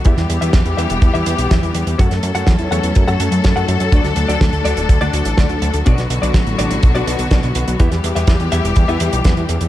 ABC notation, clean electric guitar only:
X:1
M:4/4
L:1/16
Q:1/4=124
K:Edor
V:1 name="Clean electric guitar"
[E,B,EGe] z2 [E,B,EGe] z2 [E,B,EGe] z2 [E,B,EGe]2 z [E,B,EGe] z3 | [F,CFAf] z2 [F,CFAf] z2 [F,CFAf] z2 [F,CFAf] [F,CFAa] z2 [F,CFAf]3 | [D,A,DFd] z2 [D,A,DFd] z2 [D,A,DFd] z2 [D,A,DFd]2 z [D,A,DFd] z3 | [B,,B,DFd] z2 [B,,B,DFd] z2 [B,,B,DFd] z2 [B,,B,DFd]2 z [B,,B,DFd] z3 |
[E,B,EGe] z2 [E,B,EGe] z2 [E,B,EGe] z2 [E,B,EGe]2 z [E,B,EGe] z3 |]